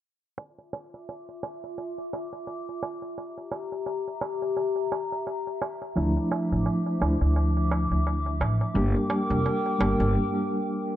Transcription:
0.38 F4 E5 D6, darbuka tek
0.59 darbuka tek
0.73 darbuka tek
0.94 darbuka tek
1.09 darbuka tek
1.29 darbuka tek
1.43 darbuka tek
1.64 darbuka tek
1.78 darbuka tek
1.98 darbuka tek
2.13 darbuka tek
2.33 darbuka tek
2.47 darbuka tek
2.69 darbuka tek
2.83 darbuka tek
3.02 darbuka tek
3.17 G4 E5 A#5, darbuka tek
3.38 darbuka tek
3.52 darbuka tek
3.72 darbuka tek
3.86 darbuka tek
4.08 darbuka tek
4.21 darbuka tek
4.42 darbuka tek
4.57 darbuka tek
4.76 darbuka tek
4.92 darbuka tek
5.12 darbuka tek
5.27 darbuka tek
5.47 darbuka tek
5.62 darbuka tek
5.82 darbuka tek
5.96 D2 F3 A3 D4 E4 D6, darbuka tek
6.17 darbuka tek
6.32 darbuka tek
6.52 A1, darbuka tek
6.66 darbuka tek
6.86 darbuka tek
7.00 D2 F3 A3 D4 E4, darbuka tek
7.21 D2, darbuka tek
7.36 darbuka tek
7.57 darbuka tek
7.71 darbuka tek
7.91 D2, darbuka tek
8.07 darbuka tek
8.26 darbuka tek
8.40 A1, darbuka tek
8.61 darbuka tek
8.74 G1 G3 A#3 D4 G4 A#4 G5 D6, darbuka tek
8.96 darbuka tek
9.10 darbuka tek
9.30 F1, darbuka tek
9.46 darbuka tek
9.66 darbuka tek
9.78 G1 G3 A#3 D4 G4, darbuka tek
10.00 G1, darbuka tek

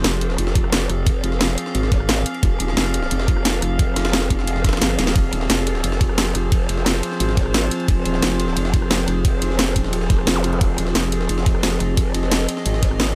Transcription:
Already playing: F3 C4 G#4 F5
0.04 F1, snare, closed hi-hat, ride
0.21 closed hi-hat, ride
0.30 snare
0.38 F1, closed hi-hat, ride
0.47 snare
0.55 kick, closed hi-hat, ride
0.64 cross-stick
0.72 snare, closed hi-hat, ride
0.81 snare
0.89 F1, cross-stick, closed hi-hat, ride
1.07 kick, closed hi-hat, ride
1.24 F1, closed hi-hat, ride
1.32 snare
1.41 snare, closed hi-hat, ride
1.49 snare
1.58 closed hi-hat, ride
1.66 snare
1.75 G#1, closed hi-hat, ride
1.83 snare
1.92 kick, snare, closed hi-hat, ride
2.00 cross-stick
2.09 snare, closed hi-hat, ride
2.17 cross-stick
2.26 closed hi-hat, ride
2.34 ride
2.43 F1, kick, closed hi-hat, ride
2.60 D#1, closed hi-hat, ride
2.68 snare
2.77 F1, snare, closed hi-hat, ride
2.94 closed hi-hat, ride
3.03 snare
3.11 F1, closed hi-hat, ride
3.20 snare
3.28 kick, closed hi-hat, ride
3.37 cross-stick
3.45 snare, closed hi-hat, ride
3.54 snare
3.62 F1, cross-stick, closed hi-hat, ride
3.79 kick, closed hi-hat, ride
3.96 F1, snare, closed hi-hat, ride
4.05 snare, ride
4.13 snare, closed hi-hat, ride
4.22 snare
4.30 F1, kick, closed hi-hat, ride
4.39 snare
4.47 closed hi-hat, ride
4.56 snare
4.64 kick, snare, closed hi-hat, ride
4.69 snare, ride
4.73 cross-stick, snare, ride
4.77 snare, ride
4.81 G1, snare, closed hi-hat, ride
4.90 cross-stick
4.99 D#1, snare, closed hi-hat, ride
5.07 snare
5.16 F1 C5, kick, closed hi-hat, ride
5.33 D#1, closed hi-hat, ride
5.41 snare
5.50 F1, snare, closed hi-hat, ride
5.67 closed hi-hat, ride
5.75 snare
5.84 F1, closed hi-hat, ride
5.92 snare
6.01 kick, closed hi-hat, ride
6.09 cross-stick
6.18 snare, closed hi-hat, ride
6.26 snare
6.35 F1, cross-stick, closed hi-hat, ride
6.52 kick, closed hi-hat, ride
6.69 F1, closed hi-hat, ride
6.78 snare
6.86 snare, closed hi-hat, ride
6.95 snare
7.03 closed hi-hat, ride
7.12 snare
7.20 G#1, closed hi-hat, ride
7.29 snare
7.37 kick, snare, closed hi-hat, ride
7.46 cross-stick
7.54 snare, closed hi-hat, ride
7.63 cross-stick
7.71 closed hi-hat, ride
7.80 ride
7.88 F1, kick, closed hi-hat, ride
8.05 D#1, closed hi-hat, ride
8.14 snare
8.22 F1, snare, closed hi-hat, ride
8.40 closed hi-hat, ride
8.48 snare
8.57 F1, closed hi-hat, ride
8.65 snare
8.74 kick, closed hi-hat, ride
8.82 cross-stick
8.91 snare, closed hi-hat, ride
8.99 snare
9.08 F1, cross-stick, closed hi-hat, ride
9.25 kick, closed hi-hat, ride
9.42 F1, closed hi-hat, ride
9.50 snare
9.59 snare, closed hi-hat, ride
9.67 snare
9.76 D#1, kick, closed hi-hat, ride
9.84 snare
9.93 closed hi-hat, ride
10.01 snare
10.10 F1, kick, snare, closed hi-hat, ride
10.19 cross-stick
10.27 F1, snare, closed hi-hat, ride
10.36 cross-stick, zap
10.44 closed hi-hat, ride
10.53 ride
10.61 F1 D#5, kick, closed hi-hat, ride
10.78 D#1, closed hi-hat, ride
10.87 snare
10.95 F1, snare, closed hi-hat, ride
11.12 closed hi-hat, ride
11.21 snare
11.29 F1, closed hi-hat, ride
11.38 snare
11.46 kick, closed hi-hat, ride
11.55 cross-stick
11.63 snare, closed hi-hat, ride
11.72 snare
11.80 F1, cross-stick, closed hi-hat, ride
11.97 kick, closed hi-hat, ride
12.14 F1, closed hi-hat, ride
12.23 snare
12.32 snare, closed hi-hat, ride
12.40 snare
12.49 closed hi-hat, ride
12.57 snare
12.66 G#1, closed hi-hat, ride
12.74 snare
12.83 kick, snare, closed hi-hat, ride
12.91 cross-stick
13.00 snare, closed hi-hat, ride
13.08 cross-stick

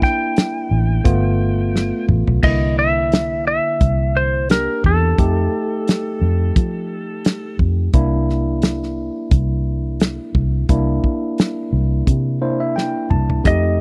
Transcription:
Already playing: A#3 D4 E4
0.02 G5, kick, snare
0.36 snare, closed hi-hat
0.71 A1
1.04 G1 A3 B3 F4, kick, closed hi-hat
1.76 snare
2.09 A1, mid tom
2.28 B1, floor tom
2.43 C2 D3 A#3 E4 D#5, kick, crash
2.79 E5
3.12 snare, closed hi-hat
3.47 E5
3.81 C2, kick, closed hi-hat
4.17 C5
4.50 A#3 D4 G4 A#4, snare, closed hi-hat
4.84 E2 A4, kick
5.18 F2 A3 D#4 G4, kick, closed hi-hat
5.88 snare, closed hi-hat
6.21 F2
6.56 F3, kick, closed hi-hat
7.25 snare, closed hi-hat
7.59 F2, kick
7.93 C2 A#3 D4 E4, kick, closed hi-hat
8.29 snare
8.62 snare, closed hi-hat
8.83 snare
9.31 C2, kick, closed hi-hat
10.00 snare, closed hi-hat
10.35 C2, kick
10.69 C2 A#3 D4 E4, kick, closed hi-hat
11.04 kick
11.38 snare, closed hi-hat
11.73 C2
12.07 C3, kick, closed hi-hat
12.41 A#3 D4 E4 C5
12.60 E5
12.76 G5, snare
13.10 C2 A5, mid tom
13.30 floor tom
13.44 F2 A3 D#4 G4 D#5, kick, closed hi-hat

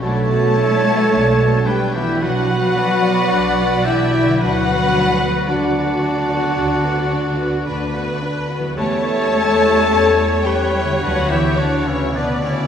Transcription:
Already playing: B2 F#3 D4
0.00 B1 A3 D4 F#4 A4 B4 C#5 A5
0.05 C#5
0.32 B3 F#4
0.58 D4 E4
0.86 B3 F#4
1.13 B1 D4
1.41 B3 F#4
1.66 G3 D4 G4 B4 G5
1.93 E3 B3 E4 F#4 G4 E5
2.19 B1 F#3 D4 F#4 B4 F#5
2.49 B3 F#4
2.75 D4 D5
3.04 B3 F#4
3.32 B1 D4
3.60 B3 F#4
3.85 E3 D4 E4 G4 E5
4.15 B3 F#4
4.24 D3
4.29 F#3
4.33 D4
4.37 F#3 F#4 B4 F#5
4.42 D2 D4 F#4
4.69 B3 F#4
4.95 D4
5.23 B3 F#4
5.47 D2 D3 D4 F#4 D5
5.51 D4
5.76 B3 F#4
6.03 D4
6.28 B3 F#4
6.55 D2 D4
6.84 B3 F#4
7.11 D4
7.38 B3 F#4
7.67 D2 D4 B4
7.94 B3 F#4
8.22 D4
8.50 B3 F#4
8.59 E3
8.63 G3
8.68 C#4
8.72 G3 A4 C#5
8.77 E2 A3 C#4 A4 C#5 A5
9.05 G3 E4
9.32 G3 C#4
9.60 G3 E4
9.88 E2 G3 C#4 C#5
10.16 G3 E4
10.43 G3 C#4 G4 B4 G5
10.71 G3 E4
10.84 D3
10.88 B3
10.93 F#4
10.97 F#4 B4 F#5
11.02 D2 F#3 D4 F#4 B4
11.28 E3 B3 E4 F#4 G4 E5
11.56 D3 D4 F#4 D5
11.84 C#3 B3 C#4 E4 F#4 C#5
12.14 D2 B2 B3 D4 B4 D5
12.43 C#3 B3 C#4 E4 F#4 C#5

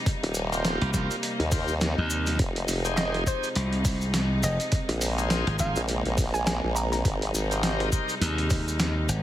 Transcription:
Already playing: G3 D#4
0.06 C3 A#3, kick, closed hi-hat, maracas
0.23 D#1, closed hi-hat
0.34 maracas
0.52 F4 G4 A#4 C5, closed hi-hat, maracas
0.65 snare, closed hi-hat, maracas
0.81 C2, snare, closed hi-hat
0.94 F4 G4 A#4 C5, kick, snare, maracas
1.11 closed hi-hat, maracas
1.23 closed hi-hat, maracas
1.40 D#2, closed hi-hat
1.52 F4 G4 A#4 C5, kick, open hi-hat, maracas
1.68 maracas
1.81 snare, closed hi-hat, maracas
1.98 D#2
2.10 maracas
2.26 snare, closed hi-hat, maracas
2.30 snare
2.35 F1 F3, snare, closed hi-hat
2.39 G#3, kick, maracas
2.56 closed hi-hat
2.68 F1, open hi-hat, maracas
2.85 D#4 G4 G#4 C5, closed hi-hat, maracas
2.97 D#5, snare, closed hi-hat, maracas
3.14 snare, closed hi-hat
3.27 D#4 G4 G#4 C5, kick, maracas
3.43 closed hi-hat, maracas
3.55 C2, closed hi-hat, maracas
3.73 closed hi-hat
3.85 kick, open hi-hat, maracas
4.01 maracas
4.14 snare, closed hi-hat, maracas
4.43 F1 D#5, maracas
4.60 closed hi-hat, maracas
4.71 A#3, kick, closed hi-hat, maracas
4.89 A#1, closed hi-hat
5.01 open hi-hat, maracas
5.18 D#4 F4 G#4 C5, closed hi-hat, maracas
5.30 snare, closed hi-hat, maracas
5.47 G#1, snare, closed hi-hat
5.59 D#4 F4 G#4 C5 F5, kick, snare, maracas
5.76 A#1, closed hi-hat, maracas
5.88 closed hi-hat, maracas
6.05 A#1, closed hi-hat
6.18 kick, open hi-hat, maracas
6.34 G#5, maracas
6.46 G#5, snare, closed hi-hat, maracas
6.64 A#1
6.76 A#5, maracas
6.92 A#5, snare, closed hi-hat, maracas
7.05 G#1 G3 D#4, kick, closed hi-hat, maracas
7.22 closed hi-hat
7.34 G#1, maracas
7.51 D#4 G4 A#4 C5, closed hi-hat, maracas
7.63 snare, closed hi-hat, maracas
7.80 snare, closed hi-hat
7.92 D#4 G4 A#4 C5, kick, maracas
8.09 closed hi-hat, maracas
8.21 D#2, closed hi-hat, maracas
8.38 closed hi-hat
8.50 kick, open hi-hat, maracas
8.68 maracas
8.80 snare, closed hi-hat, maracas
9.09 G#1, maracas

